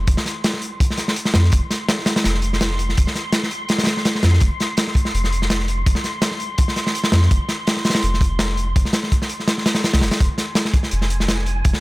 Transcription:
0.00 10.21 C6 medium
0.07 0.17 F1 loud
0.07 kick loud
0.07 closed hi-hat loud
0.17 snare medium
0.26 snare soft
0.26 closed hi-hat medium
0.44 snare loud
0.44 closed hi-hat medium
0.54 snare medium
0.62 closed hi-hat medium
0.80 kick loud
0.80 closed hi-hat medium
0.91 snare soft
0.97 snare soft
0.97 closed hi-hat medium
1.08 snare medium
1.16 closed hi-hat loud
1.25 snare medium
1.34 1.51 F2 medium
1.34 snare loud
1.34 closed hi-hat medium
1.44 snare soft
1.52 1.61 F1 loud
1.52 kick loud
1.52 closed hi-hat loud
1.71 snare medium
1.71 closed hi-hat medium
1.89 snare loud
1.89 closed hi-hat medium
1.99 snare soft
2.06 snare loud
2.06 closed hi-hat medium
2.16 snare loud
2.16 closed hi-hat medium
2.24 2.96 F1 medium
2.24 snare loud
2.24 closed hi-hat medium
2.34 snare soft
2.42 closed hi-hat medium
2.53 snare soft
2.61 snare loud
2.61 closed hi-hat medium
2.71 snare soft
2.79 closed hi-hat medium
2.89 snare soft
2.97 3.06 F1 loud
2.97 kick loud
2.97 closed hi-hat medium
3.07 snare medium
3.15 snare soft
3.15 closed hi-hat medium
3.32 snare loud
3.32 closed hi-hat medium
3.43 snare soft
3.51 closed hi-hat medium
3.69 snare loud
3.69 closed hi-hat medium
3.78 snare medium
3.78 closed hi-hat medium
3.84 snare medium
3.84 closed hi-hat medium
3.87 snare loud
3.87 closed hi-hat medium
3.97 snare medium
4.05 snare loud
4.05 closed hi-hat medium
4.15 snare medium
4.23 4.40 F2 medium
4.23 snare loud
4.23 closed hi-hat medium
4.33 snare soft
4.40 4.50 F1 medium
4.40 kick loud
4.40 closed hi-hat medium
4.60 snare medium
4.60 closed hi-hat medium
4.77 snare loud
4.77 closed hi-hat medium
4.87 snare soft
4.95 kick medium
4.95 closed hi-hat medium
5.05 snare medium
5.14 5.85 F1 medium
5.14 closed hi-hat medium
5.24 snare soft
5.32 closed hi-hat medium
5.42 snare soft
5.50 snare loud
5.50 closed hi-hat medium
5.60 snare soft
5.68 closed hi-hat medium
5.86 5.95 F1 loud
5.86 kick loud
5.86 closed hi-hat loud
5.95 snare medium
6.04 snare soft
6.04 closed hi-hat medium
6.22 snare loud
6.22 closed hi-hat medium
6.31 snare soft
6.40 closed hi-hat medium
6.58 kick loud
6.58 closed hi-hat medium
6.68 snare medium
6.76 snare soft
6.76 closed hi-hat medium
6.87 snare medium
6.95 closed hi-hat medium
7.04 snare medium
7.12 7.29 F2 medium
7.12 snare loud
7.12 closed hi-hat medium
7.22 snare soft
7.31 7.40 F1 loud
7.31 kick loud
7.31 closed hi-hat medium
7.49 snare medium
7.49 closed hi-hat medium
7.67 snare loud
7.67 closed hi-hat medium
7.77 snare soft
7.85 snare medium
7.85 closed hi-hat medium
7.90 snare medium
7.90 closed hi-hat medium
7.95 snare loud
7.95 closed hi-hat medium
8.03 8.74 F1 medium
8.03 closed hi-hat medium
8.14 snare soft
8.21 kick medium
8.21 closed hi-hat medium
8.39 snare loud
8.39 closed hi-hat medium
8.49 snare soft
8.57 closed hi-hat medium
8.76 8.84 F1 loud
8.76 kick loud
8.76 closed hi-hat medium
8.85 snare medium
8.93 snare loud
8.93 closed hi-hat medium
9.03 snare soft
9.12 kick medium
9.12 closed hi-hat medium
9.22 snare soft
9.29 closed hi-hat medium
9.40 snare soft
9.48 snare loud
9.48 closed hi-hat medium
9.58 snare soft
9.66 snare loud
9.66 closed hi-hat medium
9.75 snare loud
9.75 closed hi-hat medium
9.84 snare loud
9.84 closed hi-hat medium
9.93 10.03 C2 loud
9.93 snare loud
9.93 closed hi-hat medium
10.01 10.11 F1 medium
10.01 snare loud
10.01 closed hi-hat medium
10.11 snare loud
10.11 closed hi-hat medium
10.20 10.29 F1 loud
10.20 11.80 G#5 medium
10.20 kick loud
10.20 closed hi-hat medium
10.38 snare medium
10.38 closed hi-hat medium
10.55 snare loud
10.55 closed hi-hat medium
10.65 snare medium
10.74 kick loud
10.74 closed hi-hat medium
10.83 snare soft
10.91 11.63 F1 medium
10.91 closed hi-hat medium
11.02 snare soft
11.10 closed hi-hat medium
11.20 snare soft
11.28 snare loud
11.28 closed hi-hat loud
11.38 snare soft
11.46 closed hi-hat medium
11.65 11.74 F1 loud
11.65 kick loud
11.65 closed hi-hat medium
11.73 snare medium

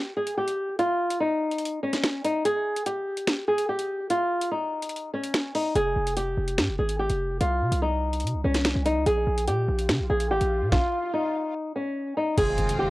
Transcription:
0.00 0.13 G4 medium
0.17 0.35 G#4 medium
0.27 closed hi-hat medium
0.38 0.76 G4 medium
0.48 closed hi-hat medium
0.79 1.18 F4 loud
0.79 closed hi-hat medium
1.10 closed hi-hat medium
1.20 1.79 D#4 medium
1.51 closed hi-hat soft
1.58 closed hi-hat medium
1.65 closed hi-hat medium
1.83 2.21 C#4 medium
1.92 snare medium
1.92 closed hi-hat medium
2.03 finger snap loud
2.03 snare loud
2.24 2.42 D#4 medium
2.24 closed hi-hat medium
2.44 2.83 G#4 loud
2.44 closed hi-hat medium
2.76 closed hi-hat medium
2.86 3.44 G4 medium
2.86 closed hi-hat medium
3.17 closed hi-hat medium
3.27 finger snap medium
3.27 snare loud
3.48 3.66 G#4 medium
3.58 closed hi-hat medium
3.69 4.08 G4 medium
3.79 closed hi-hat medium
4.10 4.49 F4 medium
4.10 closed hi-hat medium
4.41 closed hi-hat medium
4.51 5.10 D#4 medium
4.82 closed hi-hat medium
4.89 closed hi-hat medium
4.96 closed hi-hat soft
5.14 5.52 C#4 medium
5.23 closed hi-hat medium
5.34 finger snap loud
5.34 snare loud
5.55 5.73 D#4 medium
5.55 open hi-hat medium
5.75 5.95 F1 loud
5.75 6.14 G#4 loud
5.75 closed hi-hat medium
5.96 6.36 F1 loud
6.07 closed hi-hat medium
6.17 6.75 G4 medium
6.17 closed hi-hat medium
6.37 6.60 F1 loud
6.48 closed hi-hat medium
6.58 6.70 G#2 loud
6.58 finger snap medium
6.58 snare loud
6.69 6.78 F1 loud
6.79 7.09 G#1 loud
6.79 6.97 G#4 medium
6.89 closed hi-hat medium
6.99 7.38 G4 medium
7.10 7.40 F1 loud
7.10 closed hi-hat medium
7.41 7.63 C2 loud
7.41 7.80 F4 medium
7.41 closed hi-hat medium
7.62 7.71 C3 loud
7.72 8.25 C2 loud
7.72 closed hi-hat medium
7.82 8.41 D#4 medium
8.13 closed hi-hat soft
8.20 8.36 C3 loud
8.20 closed hi-hat medium
8.27 closed hi-hat medium
8.34 8.44 C2 loud
8.44 8.74 C2 loud
8.44 8.83 C#4 medium
8.54 snare medium
8.54 closed hi-hat medium
8.65 finger snap loud
8.65 snare loud
8.75 8.98 C2 loud
8.86 9.04 D#4 medium
8.86 closed hi-hat medium
8.96 9.06 C#2 loud
9.06 9.26 A#1 loud
9.06 9.45 G#4 loud
9.06 closed hi-hat medium
9.06 swell medium
9.27 9.49 A#1 loud
9.38 closed hi-hat medium
9.48 9.67 A#2 loud
9.48 10.06 G4 medium
9.48 closed hi-hat medium
9.69 9.91 A#1 loud
9.79 closed hi-hat medium
9.89 10.01 C#3 loud
9.89 finger snap medium
9.89 snare loud
10.00 10.09 A#1 loud
10.10 10.32 A#1 loud
10.10 10.28 G#4 medium
10.20 closed hi-hat medium
10.31 10.40 G#1 loud
10.31 10.70 G4 medium
10.41 10.63 A#1 loud
10.41 closed hi-hat medium
10.62 10.71 A#2 loud
10.72 11.11 F4 medium
10.72 kick loud
10.72 snare medium
11.13 11.72 D#4 medium
11.76 12.14 C#4 medium
12.17 12.35 D#4 medium
12.37 12.57 F1 loud
12.37 12.90 D#3 medium
12.37 12.90 G#3 medium
12.37 12.90 C4 medium
12.37 12.90 F4 medium
12.37 12.76 G#4 loud
12.37 closed hi-hat medium
12.37 crash loud
12.37 impact medium
12.58 12.90 F1 loud
12.58 closed hi-hat medium
12.69 closed hi-hat medium
12.79 12.90 G4 medium

